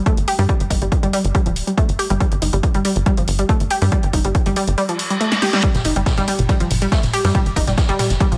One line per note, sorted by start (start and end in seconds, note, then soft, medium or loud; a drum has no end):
0.06 0.17 A3 loud
0.06 kick loud
0.06 closed hi-hat medium
0.17 0.25 G1 medium
0.17 closed hi-hat medium
0.28 0.35 G4 loud
0.28 open hi-hat loud
0.39 0.47 G2 loud
0.39 0.48 G3 loud
0.39 open hi-hat medium
0.49 0.53 G3 loud
0.49 kick loud
0.49 closed hi-hat medium
0.60 0.68 G1 loud
0.60 closed hi-hat medium
0.70 0.79 G1 medium
0.70 0.78 D#4 medium
0.70 kick medium
0.70 open hi-hat loud
0.82 0.90 G1 loud
0.82 0.86 G3 medium
0.82 closed hi-hat medium
0.92 kick loud
0.92 closed hi-hat medium
1.03 1.11 G1 medium
1.03 1.12 G3 loud
1.03 closed hi-hat medium
1.13 1.20 G3 loud
1.13 open hi-hat loud
1.24 1.32 G1 medium
1.24 closed hi-hat medium
1.35 1.39 G3 loud
1.35 kick loud
1.35 closed hi-hat medium
1.46 1.62 D1 loud
1.46 1.50 F3 medium
1.46 closed hi-hat medium
1.56 open hi-hat medium
1.67 1.71 G3 medium
1.67 closed hi-hat medium
1.77 1.88 A3 loud
1.77 kick loud
1.77 closed hi-hat medium
1.89 1.97 G1 medium
1.89 closed hi-hat medium
1.99 2.06 G4 loud
1.99 open hi-hat loud
2.10 2.18 G1 loud
2.10 2.19 G3 loud
2.10 closed hi-hat medium
2.20 2.25 G3 loud
2.20 kick loud
2.20 closed hi-hat medium
2.32 2.40 G1 loud
2.32 closed hi-hat medium
2.42 2.51 G1 medium
2.42 2.49 D#4 medium
2.42 open hi-hat loud
2.53 2.61 G1 loud
2.53 2.57 G3 medium
2.53 closed hi-hat medium
2.63 kick loud
2.63 closed hi-hat medium
2.74 2.82 G1 medium
2.74 2.84 G3 loud
2.74 closed hi-hat medium
2.85 2.92 G3 loud
2.85 open hi-hat loud
2.96 3.04 G1 medium
2.96 closed hi-hat medium
3.06 3.11 G3 loud
3.06 kick loud
3.06 closed hi-hat medium
3.17 3.25 G1 medium
3.17 3.21 F3 medium
3.17 closed hi-hat medium
3.28 3.45 G1 loud
3.28 open hi-hat loud
3.39 3.43 G3 medium
3.39 closed hi-hat medium
3.49 3.60 A3 loud
3.49 kick loud
3.49 closed hi-hat medium
3.60 3.68 G1 medium
3.60 closed hi-hat medium
3.71 3.78 G4 loud
3.71 open hi-hat loud
3.82 3.90 G2 loud
3.82 3.91 G3 loud
3.82 open hi-hat medium
3.92 3.96 G3 loud
3.92 kick loud
3.92 closed hi-hat medium
4.03 4.11 G1 loud
4.03 closed hi-hat medium
4.13 4.22 G1 medium
4.13 4.21 D#4 medium
4.13 kick medium
4.13 open hi-hat loud
4.25 4.33 G1 loud
4.25 4.29 G3 medium
4.25 closed hi-hat medium
4.35 kick loud
4.35 closed hi-hat medium
4.46 4.54 G1 medium
4.46 4.55 G3 loud
4.46 closed hi-hat medium
4.56 4.63 G3 loud
4.56 open hi-hat loud
4.67 4.75 G1 medium
4.67 closed hi-hat medium
4.78 4.82 G3 loud
4.78 open hi-hat medium
4.78 reverse cymbal medium
4.89 4.93 F3 medium
4.89 closed hi-hat medium
4.99 open hi-hat loud
5.10 5.14 G3 medium
5.10 closed hi-hat medium
5.21 5.31 A3 medium
5.21 closed hi-hat medium
5.32 snare medium
5.32 closed hi-hat medium
5.42 5.49 G4 loud
5.42 snare medium
5.42 open hi-hat loud
5.53 5.62 G3 loud
5.53 snare medium
5.53 closed hi-hat medium
5.63 5.68 G3 loud
5.63 kick loud
5.63 closed hi-hat medium
5.63 ride medium
5.74 5.83 G1 loud
5.74 snare medium
5.74 closed hi-hat medium
5.74 mid tom medium
5.84 5.94 G1 medium
5.84 5.92 D#4 medium
5.84 open hi-hat loud
5.84 ride medium
5.96 6.04 G1 loud
5.96 6.00 G3 medium
5.96 closed hi-hat medium
6.06 kick loud
6.06 snare loud
6.06 closed hi-hat medium
6.06 mid tom medium
6.06 ride medium
6.17 6.25 G1 medium
6.17 6.27 G3 loud
6.17 snare soft
6.17 closed hi-hat medium
6.28 6.38 G3 medium
6.28 open hi-hat loud
6.28 ride medium
6.39 6.47 G1 medium
6.39 closed hi-hat medium
6.39 mid tom medium
6.49 6.53 G3 loud
6.49 kick loud
6.49 closed hi-hat medium
6.49 ride medium
6.60 6.68 G1 medium
6.60 6.64 F3 medium
6.60 closed hi-hat medium
6.71 6.87 G1 loud
6.71 mid tom medium
6.71 open hi-hat medium
6.71 open hi-hat loud
6.82 6.86 G3 medium
6.82 closed hi-hat medium
6.92 7.03 A3 loud
6.92 kick loud
6.92 snare loud
6.92 closed hi-hat medium
6.92 ride medium
7.03 7.11 G1 medium
7.03 snare soft
7.03 closed hi-hat medium
7.03 mid tom medium
7.13 7.21 G4 loud
7.13 open hi-hat loud
7.13 ride medium
7.24 7.33 G2 loud
7.24 7.34 G3 loud
7.24 snare medium
7.24 open hi-hat medium
7.35 7.39 G3 loud
7.35 kick loud
7.35 closed hi-hat medium
7.35 mid tom medium
7.35 ride medium
7.46 7.54 G1 loud
7.46 closed hi-hat medium
7.56 7.65 G1 medium
7.56 7.63 D#4 medium
7.56 kick medium
7.56 open hi-hat loud
7.56 ride medium
7.67 7.75 G1 loud
7.67 7.71 G3 medium
7.67 snare soft
7.67 closed hi-hat medium
7.67 mid tom medium
7.77 kick loud
7.77 snare loud
7.77 closed hi-hat medium
7.77 ride medium
7.89 7.97 G1 medium
7.89 7.98 G3 loud
7.89 closed hi-hat medium
7.99 8.10 G3 medium
7.99 snare soft
7.99 mid tom medium
7.99 open hi-hat loud
7.99 ride medium
8.10 8.18 G1 medium
8.10 snare medium
8.10 closed hi-hat medium
8.20 8.25 G3 loud
8.20 kick loud
8.20 closed hi-hat medium
8.20 ride medium
8.32 8.38 D1 medium
8.32 8.36 F3 medium
8.32 closed hi-hat medium
8.32 mid tom medium